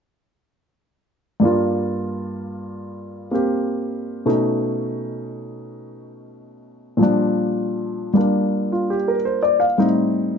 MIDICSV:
0, 0, Header, 1, 2, 480
1, 0, Start_track
1, 0, Key_signature, -2, "minor"
1, 0, Tempo, 711744
1, 961, Time_signature, 4, 2, 24, 8
1, 2877, Tempo, 684151
1, 5757, Tempo, 700935
1, 7134, End_track
2, 0, Start_track
2, 0, Title_t, "Grand piano"
2, 0, Program_c, 0, 0
2, 943, Note_on_c, 0, 43, 39
2, 954, Note_on_c, 0, 55, 35
2, 962, Note_on_c, 0, 58, 35
2, 979, Note_on_c, 0, 65, 44
2, 2225, Note_off_c, 0, 58, 0
2, 2235, Note_on_c, 0, 58, 33
2, 2243, Note_on_c, 0, 60, 29
2, 2255, Note_on_c, 0, 67, 34
2, 2868, Note_off_c, 0, 43, 0
2, 2870, Note_off_c, 0, 58, 0
2, 2870, Note_on_c, 0, 47, 36
2, 2873, Note_off_c, 0, 55, 0
2, 2873, Note_on_c, 0, 57, 32
2, 2874, Note_off_c, 0, 60, 0
2, 2877, Note_on_c, 0, 61, 32
2, 2879, Note_on_c, 0, 63, 39
2, 2880, Note_off_c, 0, 67, 0
2, 2886, Note_off_c, 0, 65, 0
2, 4775, Note_on_c, 0, 46, 40
2, 4789, Note_on_c, 0, 53, 35
2, 4793, Note_off_c, 0, 47, 0
2, 4795, Note_off_c, 0, 57, 0
2, 4796, Note_off_c, 0, 61, 0
2, 4797, Note_off_c, 0, 63, 0
2, 4801, Note_on_c, 0, 55, 35
2, 4814, Note_on_c, 0, 62, 42
2, 5581, Note_off_c, 0, 55, 0
2, 5592, Note_on_c, 0, 55, 34
2, 5602, Note_on_c, 0, 58, 32
2, 5605, Note_off_c, 0, 62, 0
2, 5615, Note_on_c, 0, 62, 36
2, 5998, Note_on_c, 0, 65, 35
2, 6121, Note_on_c, 0, 67, 37
2, 6144, Note_off_c, 0, 65, 0
2, 6243, Note_on_c, 0, 70, 37
2, 6285, Note_off_c, 0, 67, 0
2, 6361, Note_on_c, 0, 72, 43
2, 6467, Note_off_c, 0, 70, 0
2, 6479, Note_on_c, 0, 74, 44
2, 6566, Note_off_c, 0, 72, 0
2, 6597, Note_on_c, 0, 77, 45
2, 6624, Note_off_c, 0, 74, 0
2, 6703, Note_off_c, 0, 46, 0
2, 6710, Note_off_c, 0, 53, 0
2, 6712, Note_off_c, 0, 55, 0
2, 6717, Note_off_c, 0, 58, 0
2, 6722, Note_on_c, 0, 45, 36
2, 6723, Note_on_c, 0, 55, 33
2, 6724, Note_off_c, 0, 62, 0
2, 6726, Note_on_c, 0, 60, 32
2, 6731, Note_on_c, 0, 63, 39
2, 6763, Note_off_c, 0, 77, 0
2, 7134, Note_off_c, 0, 45, 0
2, 7134, Note_off_c, 0, 55, 0
2, 7134, Note_off_c, 0, 60, 0
2, 7134, Note_off_c, 0, 63, 0
2, 7134, End_track
0, 0, End_of_file